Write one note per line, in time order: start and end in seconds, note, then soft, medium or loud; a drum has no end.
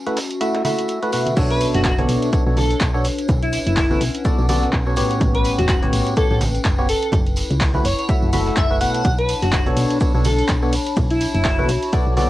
0.00 1.37 C#4 medium
0.00 2.14 F#4 medium
0.00 2.14 E5 medium
0.00 5.89 A5 medium
0.06 0.18 A3 medium
0.06 0.18 E4 medium
0.06 0.18 F#4 medium
0.06 0.18 B4 medium
0.06 closed hi-hat soft
0.06 tambourine soft
0.16 snare medium
0.16 open hi-hat medium
0.16 tambourine medium
0.30 closed hi-hat medium
0.30 tambourine soft
0.41 0.62 A3 medium
0.41 0.62 E4 medium
0.41 0.62 F#4 medium
0.41 0.62 E5 medium
0.41 closed hi-hat medium
0.41 tambourine soft
0.54 snare loud
0.54 closed hi-hat soft
0.54 tambourine soft
0.65 0.99 A3 medium
0.65 0.99 E4 medium
0.65 0.99 F#4 medium
0.65 0.99 E5 medium
0.65 open hi-hat medium
0.65 tambourine medium
0.65 high conga medium
0.78 closed hi-hat medium
0.78 tambourine soft
0.78 shaker medium
0.88 closed hi-hat medium
0.88 tambourine soft
0.88 shaker medium
1.02 1.11 A3 medium
1.02 1.11 E4 medium
1.02 1.11 F#4 medium
1.02 1.11 B4 medium
1.02 closed hi-hat soft
1.02 tambourine soft
1.12 1.35 B2 medium
1.12 1.35 A3 medium
1.12 1.35 E4 medium
1.12 1.35 F#4 medium
1.12 1.35 B4 medium
1.12 open hi-hat medium
1.12 tambourine medium
1.26 closed hi-hat medium
1.26 tambourine soft
1.26 high conga medium
1.36 1.66 B1 loud
1.36 1.93 B2 loud
1.36 1.93 B3 medium
1.36 1.93 D4 loud
1.36 3.29 D4 medium
1.36 1.93 A4 medium
1.36 1.93 C#5 loud
1.36 kick loud
1.36 closed hi-hat medium
1.36 crash loud
1.36 tambourine soft
1.36 high conga medium
1.36 shaker medium
1.50 1.66 B4 loud
1.50 closed hi-hat medium
1.61 7.77 B4 medium
1.61 open hi-hat loud
1.61 tambourine medium
1.61 shaker medium
1.74 2.03 F#1 medium
1.74 1.81 F#4 medium
1.74 snare medium
1.74 closed hi-hat medium
1.74 tambourine soft
1.85 1.94 F#4 medium
1.85 kick loud
1.85 snare loud
1.85 clap loud
1.85 closed hi-hat medium
1.85 tambourine soft
1.85 shaker medium
1.99 2.30 B2 medium
1.99 2.30 B3 medium
1.99 2.30 D4 medium
1.99 2.30 A4 medium
1.99 2.30 C#5 loud
1.99 closed hi-hat soft
1.99 high conga medium
2.09 2.18 B1 medium
2.09 open hi-hat medium
2.09 tambourine medium
2.09 shaker medium
2.22 4.06 C#5 medium
2.22 closed hi-hat medium
2.22 tambourine soft
2.33 2.45 B2 medium
2.33 2.45 B3 medium
2.33 2.45 D4 medium
2.33 2.45 A4 medium
2.33 2.45 C#5 medium
2.33 kick loud
2.33 closed hi-hat medium
2.33 tambourine medium
2.33 shaker medium
2.46 2.75 B1 loud
2.46 2.58 B2 medium
2.46 2.58 B3 medium
2.46 2.58 D4 medium
2.46 2.58 A4 medium
2.46 2.58 C#5 medium
2.46 tambourine soft
2.57 2.74 A4 medium
2.57 open hi-hat loud
2.57 tambourine medium
2.57 high conga loud
2.57 shaker medium
2.71 closed hi-hat soft
2.71 tambourine soft
2.81 3.10 B1 medium
2.81 kick loud
2.81 snare loud
2.81 clap loud
2.81 closed hi-hat medium
2.81 tambourine medium
2.81 shaker medium
2.95 3.06 B2 medium
2.95 3.06 B3 medium
2.95 3.06 D4 medium
2.95 3.06 A4 medium
2.95 3.06 C#5 loud
2.95 tambourine soft
3.04 open hi-hat medium
3.04 tambourine medium
3.04 shaker medium
3.18 closed hi-hat medium
3.18 tambourine soft
3.29 3.58 B1 loud
3.29 7.77 C#4 medium
3.29 kick loud
3.29 closed hi-hat medium
3.29 tambourine medium
3.29 high conga medium
3.29 shaker medium
3.42 3.58 E4 medium
3.42 closed hi-hat medium
3.42 tambourine soft
3.52 open hi-hat loud
3.52 tambourine loud
3.52 shaker medium
3.66 3.95 F#1 medium
3.66 4.01 E4 loud
3.66 closed hi-hat medium
3.66 tambourine soft
3.77 kick loud
3.77 snare loud
3.77 clap loud
3.77 closed hi-hat medium
3.77 open hi-hat medium
3.77 tambourine medium
3.90 4.02 B2 medium
3.90 4.02 B3 medium
3.90 4.02 F#4 medium
3.90 4.02 A4 medium
3.90 4.02 B4 loud
3.90 5.21 F#5 medium
3.90 tambourine soft
3.90 high conga medium
4.01 4.10 B1 medium
4.01 open hi-hat medium
4.01 tambourine medium
4.01 shaker medium
4.14 closed hi-hat medium
4.14 tambourine soft
4.25 4.46 B2 medium
4.25 4.46 B3 medium
4.25 4.46 F#4 medium
4.25 4.46 A4 medium
4.25 4.46 D5 loud
4.25 kick loud
4.25 closed hi-hat medium
4.25 tambourine medium
4.25 shaker medium
4.38 4.67 B1 loud
4.38 tambourine soft
4.49 4.71 B2 medium
4.49 4.71 B3 medium
4.49 4.71 F#4 medium
4.49 4.71 A4 medium
4.49 4.71 D5 loud
4.49 open hi-hat loud
4.49 tambourine loud
4.49 high conga medium
4.49 shaker medium
4.63 snare soft
4.63 tambourine soft
4.73 5.02 B1 medium
4.73 kick loud
4.73 snare loud
4.73 clap loud
4.73 closed hi-hat medium
4.73 tambourine medium
4.73 shaker medium
4.86 4.95 B2 medium
4.86 4.95 B3 medium
4.86 4.95 F#4 medium
4.86 4.95 A4 medium
4.86 4.95 C#5 medium
4.86 tambourine soft
4.96 5.79 A2 loud
4.96 5.79 B3 medium
4.96 5.79 F#4 medium
4.96 5.79 G4 medium
4.96 5.79 C#5 loud
4.96 open hi-hat medium
4.96 tambourine loud
4.96 shaker medium
5.11 closed hi-hat medium
5.11 tambourine soft
5.20 5.50 A1 medium
5.20 kick loud
5.20 closed hi-hat medium
5.20 tambourine medium
5.20 high conga loud
5.20 shaker medium
5.35 5.50 B4 loud
5.35 closed hi-hat medium
5.44 open hi-hat loud
5.44 tambourine medium
5.44 shaker medium
5.58 5.87 E1 medium
5.58 5.65 F#4 medium
5.58 snare medium
5.58 closed hi-hat medium
5.58 tambourine soft
5.69 5.78 F#4 medium
5.69 kick loud
5.69 snare loud
5.69 clap loud
5.69 closed hi-hat medium
5.69 tambourine medium
5.69 shaker medium
5.83 6.14 A2 loud
5.83 6.14 B3 medium
5.83 6.14 F#4 medium
5.83 6.14 G4 medium
5.83 6.14 C#5 loud
5.83 closed hi-hat soft
5.83 high conga medium
5.93 6.02 A1 medium
5.93 open hi-hat medium
5.93 tambourine medium
5.93 shaker medium
5.97 6.89 G5 medium
6.06 closed hi-hat medium
6.06 tambourine soft
6.17 6.29 A2 medium
6.17 6.29 B3 medium
6.17 6.29 F#4 medium
6.17 6.29 G4 medium
6.17 6.26 A4 medium
6.17 6.29 C#5 medium
6.17 kick loud
6.17 closed hi-hat medium
6.17 tambourine medium
6.17 shaker medium
6.30 6.59 A1 loud
6.30 6.42 A2 medium
6.30 6.42 B3 medium
6.30 6.42 F#4 medium
6.30 6.42 G4 medium
6.30 6.37 A4 medium
6.30 6.42 C#5 medium
6.30 tambourine soft
6.41 open hi-hat loud
6.41 tambourine loud
6.41 high conga medium
6.41 shaker medium
6.55 closed hi-hat soft
6.55 tambourine soft
6.64 6.94 F#1 medium
6.64 kick loud
6.64 snare loud
6.64 clap loud
6.64 closed hi-hat medium
6.64 tambourine medium
6.64 shaker medium
6.78 6.88 B3 loud
6.78 6.88 F#4 medium
6.78 6.88 G4 medium
6.78 6.88 C#5 loud
6.78 tambourine soft
6.89 9.82 E4 medium
6.89 7.06 A4 medium
6.89 open hi-hat loud
6.89 tambourine loud
6.89 shaker medium
7.02 closed hi-hat medium
7.02 tambourine soft
7.12 7.42 F#1 loud
7.12 kick loud
7.12 closed hi-hat medium
7.12 tambourine medium
7.12 high conga medium
7.12 shaker medium
7.27 closed hi-hat soft
7.27 tambourine soft
7.36 12.30 C#5 medium
7.36 open hi-hat loud
7.36 tambourine loud
7.36 shaker medium
7.50 7.79 C#2 medium
7.50 closed hi-hat soft
7.50 tambourine soft
7.61 kick loud
7.61 snare loud
7.61 clap loud
7.61 closed hi-hat medium
7.61 open hi-hat medium
7.61 tambourine medium
7.74 7.86 A3 medium
7.74 7.86 E4 medium
7.74 7.86 F#4 medium
7.74 7.86 B4 medium
7.74 12.30 A5 medium
7.74 tambourine soft
7.74 high conga medium
7.78 9.82 F#5 medium
7.85 7.93 F#1 medium
7.85 7.94 C#5 medium
7.85 open hi-hat loud
7.85 tambourine medium
7.85 shaker medium
7.99 8.05 C#5 medium
7.99 closed hi-hat soft
7.99 tambourine soft
8.09 8.30 A3 medium
8.09 8.30 E4 medium
8.09 8.30 F#4 medium
8.09 8.30 E5 medium
8.09 kick loud
8.09 closed hi-hat medium
8.09 tambourine medium
8.09 shaker medium
8.22 8.51 F#1 loud
8.22 tambourine soft
8.33 8.67 A3 medium
8.33 8.67 E4 medium
8.33 8.67 F#4 medium
8.33 8.67 E5 loud
8.33 open hi-hat loud
8.33 tambourine medium
8.33 high conga medium
8.33 shaker medium
8.46 snare soft
8.46 tambourine soft
8.57 8.86 F#1 medium
8.57 8.74 E5 medium
8.57 kick loud
8.57 clap loud
8.57 closed hi-hat medium
8.57 tambourine medium
8.57 shaker medium
8.71 8.79 A3 medium
8.71 8.79 E4 medium
8.71 8.79 F#4 medium
8.71 8.79 B4 medium
8.71 tambourine soft
8.81 9.03 B2 medium
8.81 9.03 A3 medium
8.81 9.03 E4 medium
8.81 9.03 F#4 medium
8.81 9.03 B4 medium
8.81 9.10 F#5 medium
8.81 open hi-hat medium
8.81 tambourine loud
8.81 shaker medium
8.94 closed hi-hat soft
8.94 closed hi-hat medium
8.94 tambourine soft
9.05 9.34 B1 loud
9.05 11.74 D4 medium
9.05 kick loud
9.05 closed hi-hat medium
9.05 tambourine medium
9.05 high conga medium
9.05 shaker medium
9.19 9.34 B4 loud
9.19 12.30 B5 medium
9.19 closed hi-hat medium
9.29 open hi-hat loud
9.29 ride medium
9.29 tambourine medium
9.29 shaker medium
9.42 9.71 F#1 medium
9.42 9.49 F#4 medium
9.42 snare medium
9.42 closed hi-hat soft
9.42 tambourine soft
9.53 9.62 F#4 medium
9.53 kick loud
9.53 snare loud
9.53 clap loud
9.53 closed hi-hat medium
9.53 tambourine medium
9.53 shaker medium
9.66 9.98 B2 medium
9.66 9.98 B3 medium
9.66 9.98 D4 medium
9.66 9.98 A4 medium
9.66 9.98 C#5 loud
9.66 closed hi-hat soft
9.66 high conga medium
9.77 9.86 B1 medium
9.77 open hi-hat medium
9.77 ride medium
9.77 tambourine medium
9.77 shaker medium
9.91 closed hi-hat soft
9.91 tambourine soft
10.01 10.13 B2 medium
10.01 10.13 B3 medium
10.01 10.13 D4 medium
10.01 10.13 A4 medium
10.01 10.13 C#5 medium
10.01 kick loud
10.01 closed hi-hat medium
10.01 tambourine medium
10.01 shaker medium
10.14 10.43 B1 loud
10.14 10.26 B2 medium
10.14 10.26 B3 medium
10.14 10.26 D4 medium
10.14 10.26 A4 medium
10.14 10.26 C#5 medium
10.14 tambourine soft
10.24 10.42 A4 medium
10.24 open hi-hat loud
10.24 ride medium
10.24 tambourine medium
10.24 high conga medium
10.24 shaker medium
10.39 closed hi-hat soft
10.39 tambourine soft
10.49 10.78 B1 medium
10.49 kick loud
10.49 snare loud
10.49 clap loud
10.49 closed hi-hat medium
10.49 tambourine medium
10.49 shaker medium
10.62 10.74 B2 loud
10.62 10.74 B3 medium
10.62 10.74 D4 medium
10.62 10.74 A4 medium
10.62 10.74 C#5 loud
10.62 tambourine soft
10.73 open hi-hat medium
10.73 ride medium
10.73 tambourine loud
10.73 shaker medium
10.87 closed hi-hat medium
10.87 tambourine soft
10.97 11.26 B1 loud
10.97 12.30 F#4 medium
10.97 kick loud
10.97 closed hi-hat medium
10.97 tambourine soft
10.97 high conga loud
10.97 shaker medium
11.11 11.26 E4 loud
11.11 closed hi-hat medium
11.11 tambourine soft
11.21 open hi-hat loud
11.21 ride medium
11.21 tambourine loud
11.21 shaker medium
11.35 11.63 F#1 medium
11.35 11.69 E4 loud
11.35 closed hi-hat medium
11.35 tambourine soft
11.45 kick loud
11.45 snare loud
11.45 clap loud
11.45 closed hi-hat medium
11.45 open hi-hat medium
11.45 tambourine soft
11.59 11.70 B2 medium
11.59 11.70 B3 medium
11.59 11.70 F#4 medium
11.59 11.70 A4 medium
11.59 11.70 B4 medium
11.59 tambourine soft
11.59 high conga medium
11.69 11.77 B1 medium
11.69 open hi-hat medium
11.69 ride medium
11.69 tambourine medium
11.69 shaker medium
11.83 closed hi-hat medium
11.83 tambourine soft
11.93 12.14 B2 medium
11.93 12.14 B3 medium
11.93 12.14 F#4 medium
11.93 12.14 A4 medium
11.93 12.14 D5 medium
11.93 kick loud
11.93 closed hi-hat medium
11.93 tambourine soft
11.93 shaker medium
12.07 12.30 B1 loud
12.07 tambourine soft
12.17 12.30 B2 medium
12.17 12.30 B3 medium
12.17 12.30 F#4 medium
12.17 12.30 A4 medium
12.17 12.30 D5 medium
12.17 open hi-hat loud
12.17 ride medium
12.17 tambourine medium
12.17 high conga loud
12.17 shaker medium